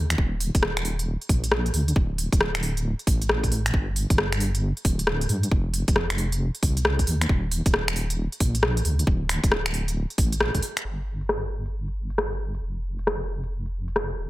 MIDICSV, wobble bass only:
0, 0, Header, 1, 2, 480
1, 0, Start_track
1, 0, Tempo, 444444
1, 198, Time_signature, 4, 2, 24, 8
1, 15443, End_track
2, 0, Start_track
2, 0, Title_t, "Wobble bass"
2, 0, Program_c, 0, 39
2, 0, Note_on_c, 0, 39, 89
2, 164, Note_off_c, 0, 39, 0
2, 197, Note_on_c, 0, 27, 100
2, 543, Note_off_c, 0, 27, 0
2, 591, Note_on_c, 0, 27, 86
2, 1263, Note_off_c, 0, 27, 0
2, 1397, Note_on_c, 0, 34, 104
2, 1851, Note_off_c, 0, 34, 0
2, 1879, Note_on_c, 0, 38, 90
2, 2085, Note_off_c, 0, 38, 0
2, 2117, Note_on_c, 0, 26, 102
2, 2464, Note_off_c, 0, 26, 0
2, 2512, Note_on_c, 0, 26, 89
2, 3184, Note_off_c, 0, 26, 0
2, 3316, Note_on_c, 0, 33, 105
2, 3704, Note_off_c, 0, 33, 0
2, 3710, Note_on_c, 0, 33, 84
2, 4010, Note_off_c, 0, 33, 0
2, 4036, Note_on_c, 0, 31, 101
2, 4383, Note_off_c, 0, 31, 0
2, 4430, Note_on_c, 0, 31, 86
2, 5103, Note_off_c, 0, 31, 0
2, 5237, Note_on_c, 0, 26, 105
2, 5690, Note_off_c, 0, 26, 0
2, 5717, Note_on_c, 0, 43, 91
2, 5924, Note_off_c, 0, 43, 0
2, 5956, Note_on_c, 0, 29, 101
2, 6303, Note_off_c, 0, 29, 0
2, 6350, Note_on_c, 0, 29, 90
2, 7023, Note_off_c, 0, 29, 0
2, 7157, Note_on_c, 0, 36, 104
2, 7610, Note_off_c, 0, 36, 0
2, 7638, Note_on_c, 0, 39, 87
2, 7844, Note_off_c, 0, 39, 0
2, 7877, Note_on_c, 0, 27, 103
2, 8224, Note_off_c, 0, 27, 0
2, 8271, Note_on_c, 0, 27, 90
2, 8943, Note_off_c, 0, 27, 0
2, 9077, Note_on_c, 0, 34, 101
2, 9530, Note_off_c, 0, 34, 0
2, 9560, Note_on_c, 0, 38, 90
2, 9765, Note_off_c, 0, 38, 0
2, 9797, Note_on_c, 0, 26, 102
2, 10144, Note_off_c, 0, 26, 0
2, 10191, Note_on_c, 0, 26, 91
2, 10864, Note_off_c, 0, 26, 0
2, 10997, Note_on_c, 0, 33, 100
2, 11343, Note_off_c, 0, 33, 0
2, 11390, Note_on_c, 0, 36, 87
2, 11460, Note_off_c, 0, 36, 0
2, 11715, Note_on_c, 0, 31, 88
2, 13619, Note_off_c, 0, 31, 0
2, 13636, Note_on_c, 0, 29, 88
2, 15299, Note_off_c, 0, 29, 0
2, 15316, Note_on_c, 0, 27, 86
2, 15443, Note_off_c, 0, 27, 0
2, 15443, End_track
0, 0, End_of_file